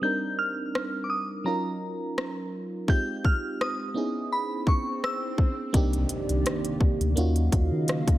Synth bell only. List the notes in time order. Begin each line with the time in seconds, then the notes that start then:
0.03 G6
0.39 F6
1.04 D6
1.10 D#6
1.46 A#5
2.90 G6
3.25 F6
3.61 D#6
4.32 B5
4.68 C#6
5.04 E6